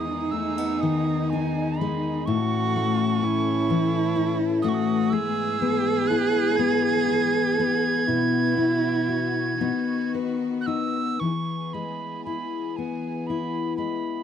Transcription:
Already playing: E2 D#3 G#3 B3 D#4 E4 G#4 D#6
0.31 A3 E6
0.58 B3
0.81 D#3 D#6
1.30 D#4 G#5
1.78 G#3 B5
2.26 A2 E3 C#4 F#4 A4 C#6
2.76 A3
3.22 C#4 E4
3.70 E3
4.16 E4
4.62 A3 F#4 D#6
4.69 C#6
4.74 D#6
5.10 G#2 G#3 B3 G#4 E6
5.62 B3
6.07 E4 F#6
6.56 B3 G#6
7.08 G#4
7.59 B3
8.06 B2 E4 F#4
8.57 E4
9.09 F#4
9.60 D#3 B3 D#4
10.14 B4
10.61 F#6
10.66 D#4 E6
11.20 E3 B3 G#4 C#6
11.73 G#3 B5
12.25 E4 B5
12.76 B3 G#5
13.27 E4 B5
13.77 G#3 B5

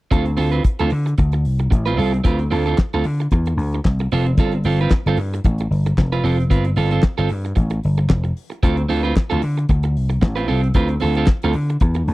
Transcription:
0.11 D2 C4 F4 A4, kick, closed hi-hat
0.26 muted clean electric guitar stroke, closed hi-hat
0.37 D2 C4 F4 A4, open hi-hat
0.52 C4 F4 B4, closed hi-hat
0.64 muted clean electric guitar stroke, kick, closed hi-hat
0.79 D2 C4 F4 A4, closed hi-hat
0.90 D3, muted clean electric guitar stroke, open hi-hat
1.06 muted clean electric guitar stroke, closed hi-hat
1.18 D2, muted clean electric guitar stroke, kick, closed hi-hat
1.32 muted clean electric guitar stroke, closed hi-hat
1.45 C2, open hi-hat
1.59 muted clean electric guitar stroke, closed hi-hat
1.71 A1, muted clean electric guitar stroke, kick, closed hi-hat
1.86 C4 F4 B4, closed hi-hat
1.97 C2 C4 F4 A4, open hi-hat
2.14 muted clean electric guitar stroke, closed hi-hat
2.24 D2 C4 F4 B4, kick, closed hi-hat
2.39 muted clean electric guitar stroke, closed hi-hat
2.51 D2 C4 F4 A4, open hi-hat
2.66 C4 F4 A4, closed hi-hat
2.78 kick, snare, clap
2.93 D2 C4 F4 A4, closed hi-hat
3.04 D3, muted clean electric guitar stroke, open hi-hat
3.20 muted clean electric guitar stroke, closed hi-hat
3.31 E2, muted clean electric guitar stroke, kick, closed hi-hat
3.46 muted clean electric guitar stroke, closed hi-hat
3.57 D2, open hi-hat
3.73 muted clean electric guitar stroke, closed hi-hat
3.85 C2, kick, snare, clap
3.99 muted clean electric guitar stroke, closed hi-hat
4.11 F1 C4 F4 A4, open hi-hat
4.26 muted clean electric guitar stroke, closed hi-hat
4.37 G1 C4 F4 A4, kick, closed hi-hat
4.52 muted clean electric guitar stroke, closed hi-hat
4.64 G1 C4 F4 A4, open hi-hat
4.79 C4 F4 B4, closed hi-hat
4.90 muted clean electric guitar stroke, kick, snare, clap
5.06 G1 C4 F4 A4, closed hi-hat
5.17 G2, muted clean electric guitar stroke, open hi-hat
5.34 muted clean electric guitar stroke, closed hi-hat
5.44 A1, muted clean electric guitar stroke, kick, closed hi-hat
5.58 muted clean electric guitar stroke, closed hi-hat
5.71 G1, open hi-hat
5.86 muted clean electric guitar stroke, closed hi-hat
5.98 F1, muted clean electric guitar stroke, kick, snare, clap
6.12 C4 F4 B4, closed hi-hat
6.24 F1 C4 F4 A4, open hi-hat
6.39 muted clean electric guitar stroke, closed hi-hat
6.50 G1 C4 F4 B4, kick, closed hi-hat
6.64 muted clean electric guitar stroke, closed hi-hat
6.76 G1 C4 F4 A4, open hi-hat
6.91 C4 F4 A4, closed hi-hat
7.02 kick, snare, clap
7.18 G1 C4 F4 A4, closed hi-hat
7.29 G2, muted clean electric guitar stroke, open hi-hat
7.45 muted clean electric guitar stroke, closed hi-hat
7.56 A1, muted clean electric guitar stroke, kick, closed hi-hat
7.70 muted clean electric guitar stroke, closed hi-hat
7.83 G1, open hi-hat
7.98 muted clean electric guitar stroke, closed hi-hat
8.09 F1, muted clean electric guitar stroke, kick, snare, clap
8.24 muted clean electric guitar stroke, closed hi-hat
8.37 open hi-hat
8.50 muted clean electric guitar stroke, closed hi-hat
8.63 D2 C4 F4 A4, kick, closed hi-hat
8.77 muted clean electric guitar stroke, closed hi-hat
8.89 D2 C4 F4 A4, open hi-hat
9.03 C4 F4 B4, closed hi-hat
9.15 muted clean electric guitar stroke, kick, snare, clap
9.30 D2 C4 F4 A4, closed hi-hat
9.42 D3, muted clean electric guitar stroke, open hi-hat
9.58 muted clean electric guitar stroke, closed hi-hat
9.69 D2, muted clean electric guitar stroke, kick, closed hi-hat
9.83 muted clean electric guitar stroke, closed hi-hat
9.97 C2, open hi-hat
10.10 muted clean electric guitar stroke, closed hi-hat
10.22 A1, muted clean electric guitar stroke, kick, snare, clap
10.36 C4 F4 B4, closed hi-hat
10.48 C2 C4 F4 A4, open hi-hat
10.63 muted clean electric guitar stroke, closed hi-hat
10.74 D2 C4 F4 B4, kick, closed hi-hat
10.88 muted clean electric guitar stroke, closed hi-hat
11.00 D2 C4 F4 A4, open hi-hat
11.15 C4 F4 A4, closed hi-hat
11.26 muted clean electric guitar stroke, kick, snare, clap
11.42 D2 C4 F4 A4, closed hi-hat
11.53 D3, muted clean electric guitar stroke, open hi-hat
11.70 muted clean electric guitar stroke, closed hi-hat
11.80 E2, muted clean electric guitar stroke, kick, closed hi-hat
11.94 muted clean electric guitar stroke, closed hi-hat
12.08 D2, open hi-hat

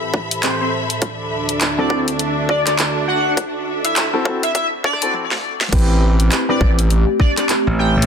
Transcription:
Already playing: A2 E3 G4 A4 C5 E5 B5
0.14 kick, cross-stick
0.31 closed hi-hat
0.43 C5, clap, closed hi-hat
0.61 C5
0.90 closed hi-hat
1.02 D2 D3 D4 F#4, kick, closed hi-hat
1.49 closed hi-hat
1.61 clap, closed hi-hat
1.78 C4 E4 F#4 A4 D5
1.90 C4 E4 F#4 A4, kick
2.08 closed hi-hat
2.19 closed hi-hat
2.49 D5, kick
2.67 D5, cross-stick, clap, closed hi-hat
2.79 clap, closed hi-hat
3.08 F#5
3.37 kick, closed hi-hat
3.84 E5, closed hi-hat
3.96 clap, closed hi-hat
4.13 C4 E4 F#4 A4
4.25 C4 E4 F#4 A4, kick
4.43 E5, closed hi-hat
4.55 E5, kick, closed hi-hat
4.84 D5, kick
4.93 cross-stick
5.02 C4 E4 F#4 A4, closed hi-hat
5.14 high tom
5.31 snare
5.61 snare
5.73 A1 A3 C4 E4 G4 B4, kick, closed hi-hat, crash
5.78 closed hi-hat
6.20 closed hi-hat
6.32 clap, closed hi-hat
6.49 C4 E4 G4 B4 D5
6.61 A1, kick
6.79 closed hi-hat
6.90 closed hi-hat
7.20 D5, kick
7.37 D5, cross-stick, clap, closed hi-hat
7.49 clap, closed hi-hat
7.67 A1
7.79 G5
7.97 A1
8.02 closed hi-hat

